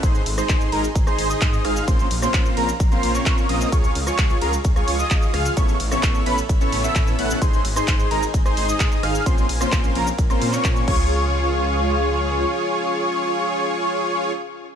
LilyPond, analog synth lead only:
\new Staff \with { instrumentName = "Analog synth lead" } { \time 4/4 \key des \major \tempo 4 = 130 c'''8 r16 c'''8. bes''16 r8 c'''8 ees'''8. f'''8 | c'''8 r16 c'''8. bes''16 r8 c'''8 des'''8. ees'''8 | des'''8 r16 des'''8. bes''16 r8 des'''8 ees'''8. f'''8 | cis'''8 r16 cis'''8. b''16 r8 cis'''8 e'''8. ges'''8 |
c'''8 r16 c'''8. bes''16 r8 c'''8 ees'''8. f'''8 | c'''8 r16 c'''8. bes''16 r8 c'''8 des'''8. des'''8~ | des'''1~ | des'''1 | }